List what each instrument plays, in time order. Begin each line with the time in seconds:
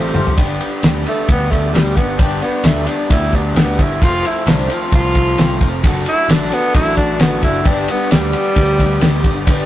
Already playing: picked electric bass A1, twelve-string acoustic guitar G3 A3 C4 F4, overdriven electric guitar G3 A3 G4 C5, tonewheel organ A3 F4 G4, reed electric piano F4 G4 A4
0.13 picked electric bass G1, twelve-string acoustic guitar A3 C4 F4, overdriven electric guitar C5, mid tom, tambourine
0.17 twelve-string acoustic guitar G3
0.26 floor tom, tambourine
0.38 picked electric bass G1, twelve-string acoustic guitar G3 B3 D4 G4, tonewheel organ B3 D4 G4, overdriven electric guitar B4, kick, ride
0.60 twelve-string acoustic guitar B3 D4 G4, ride
0.82 picked electric bass D2, twelve-string acoustic guitar G3 B3 D4 G4, snare, ride
1.04 overdriven electric guitar G3 B4, twelve-string acoustic guitar D4 G4, ride
1.08 tenor saxophone A3, twelve-string acoustic guitar B3
1.28 picked electric bass D2, twelve-string acoustic guitar G3 B3 D4 G4, tenor saxophone B3, kick, ride
1.50 tenor saxophone A3, twelve-string acoustic guitar B3 D4 G4, kick, ride
1.73 picked electric bass D2, tenor saxophone G3, twelve-string acoustic guitar G3 B3 D4 G4, snare, ride
1.96 picked electric bass G1, tenor saxophone B3, twelve-string acoustic guitar B3 D4 G4, kick, ride
2.19 picked electric bass G1, twelve-string acoustic guitar G3 B3 D4 G4, tenor saxophone D4, overdriven electric guitar B4, kick, ride
2.42 tenor saxophone B3, twelve-string acoustic guitar D4 G4, ride
2.46 twelve-string acoustic guitar B3
2.64 picked electric bass D2, twelve-string acoustic guitar G3 B3 D4 G4, tenor saxophone A3, snare, ride
2.84 overdriven electric guitar G3 B3 B4, tenor saxophone D4, twelve-string acoustic guitar G4, ride
2.90 twelve-string acoustic guitar B3 D4
3.09 picked electric bass D2, twelve-string acoustic guitar G3 B3 D4 G4, tenor saxophone E4, kick, ride
3.33 twelve-string acoustic guitar B3 D4 G4, tenor saxophone D4, kick, ride
3.54 picked electric bass D2, twelve-string acoustic guitar G3 B3 D4 G4, tenor saxophone B3, snare, ride
3.77 picked electric bass G1, twelve-string acoustic guitar B3 D4 G4, kick, ride
3.82 tenor saxophone E4
4.01 picked electric bass F1, twelve-string acoustic guitar F2 C3 F3 A3 C4 F4, tonewheel organ A3 C4 F4, tenor saxophone F4, overdriven electric guitar A4, kick, ride
4.23 twelve-string acoustic guitar A3 C4 F4, ride
4.27 twelve-string acoustic guitar F3, tenor saxophone E4
4.45 picked electric bass C2, twelve-string acoustic guitar F2 C3 F3 A3 C4 F4, snare, ride
4.51 tenor saxophone D4
4.67 twelve-string acoustic guitar A3 C4 F4, overdriven electric guitar A4, ride
4.71 twelve-string acoustic guitar F3, tenor saxophone F4
4.91 picked electric bass C2, twelve-string acoustic guitar F3 A3 C4 F4, tenor saxophone F4, kick, ride
5.13 twelve-string acoustic guitar F3 A3 C4 F4, kick, ride
5.38 picked electric bass C2, twelve-string acoustic guitar F2 C3 F3 A3 C4 F4, snare, ride
5.60 picked electric bass F1, twelve-string acoustic guitar F3 A3 C4 F4, kick, ride
5.83 picked electric bass F#1, twelve-string acoustic guitar F#3 A3 D4 F#4, tonewheel organ A3 D4 F#4, overdriven electric guitar A4, kick, ride
6.06 twelve-string acoustic guitar D4 F#4, tenor saxophone E4, ride
6.10 twelve-string acoustic guitar A3
6.27 picked electric bass A1, twelve-string acoustic guitar F#3 A3 D4 F#4, snare, ride
6.31 tenor saxophone D4
6.51 overdriven electric guitar F#3 A4, twelve-string acoustic guitar A3 D4 F#4, tenor saxophone B3, ride
6.73 picked electric bass A1, twelve-string acoustic guitar F#3 A3 D4 F#4, tenor saxophone E4, kick, ride
6.97 twelve-string acoustic guitar A3 D4 F#4, tenor saxophone D4, kick, ride
7.17 picked electric bass A1, twelve-string acoustic guitar F#3 A3 D4 F#4, snare, ride
7.21 tenor saxophone B3
7.41 picked electric bass F#1, twelve-string acoustic guitar A3 D4 F#4, tenor saxophone E4, kick, ride
7.64 picked electric bass G1, twelve-string acoustic guitar G2 D3 G3 B3 D4 G4, tonewheel organ B3 D4 G4, overdriven electric guitar B4, kick, ride
7.68 tenor saxophone D4
7.88 twelve-string acoustic guitar B3 D4 G4, tenor saxophone B3, ride, tambourine
7.92 twelve-string acoustic guitar G3
8.10 picked electric bass D2, twelve-string acoustic guitar G2 D3 G3 B3 D4 G4, tenor saxophone G3, snare, ride, tambourine
8.32 twelve-string acoustic guitar G3 B3 D4 G4, overdriven electric guitar B4, ride, tambourine
8.56 picked electric bass D2, twelve-string acoustic guitar G3 B3 D4 G4, kick, ride, tambourine
8.79 twelve-string acoustic guitar G3 B3 D4 G4, kick, ride, tambourine
9.00 picked electric bass D2, twelve-string acoustic guitar G2 D3 G3 B3 D4 G4, snare, ride, tambourine
9.24 picked electric bass G1, twelve-string acoustic guitar G3 B3 D4 G4, kick, ride, tambourine
9.47 picked electric bass G1, twelve-string acoustic guitar G2 D3 G3 B3 D4 G4, overdriven electric guitar B4, kick, ride